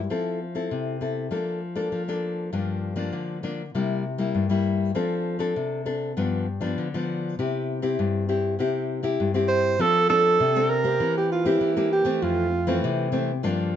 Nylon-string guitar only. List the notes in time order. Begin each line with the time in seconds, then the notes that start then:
0.10 F3 C4 E4 A4
0.55 C4 E4 A4
0.71 C3
1.01 C4 E4 A4
1.31 F3 A#3 D4 A4
1.75 A#3 D4 A4
1.92 F3
2.08 A#3 D4 A4
2.53 G2 F3 A#3 D4
2.96 F3 A#3 D4
3.13 D3
3.43 F3 A#3 D4
3.75 C3 G3 A#3 E4
4.18 G3 A#3 E4
4.35 G2
4.49 G3 A#3 E4
4.95 F3 C4 D4 A4
5.39 C4 D4 A4
5.56 C3
5.86 C4 D4 A4
6.17 G2 F3 B3 D4
6.61 F3 B3 D4
6.78 D3
6.94 F3 B3 D4
7.39 C3 C4 E4 G4
7.82 C4 E4 G4
7.99 G2
8.29 C4 E4 G4
8.59 C3 C4 E4 G4
9.03 C4 E4 G4
9.20 G2
9.34 C4 E4 G4
9.79 F3 C4 D4 A4
10.09 C4 D4 A4
10.40 C3
10.56 C4 D4 A4
10.84 A#3 C4 G4
11.00 E3
11.45 A#3 C4 G4
11.61 E3
11.77 A#3 C4 G4
12.05 E3 A3 C4
12.22 F2
12.67 E3 A3 C4
12.84 C3
13.12 E3 A3 C4
13.43 G2 F3 A#3 D4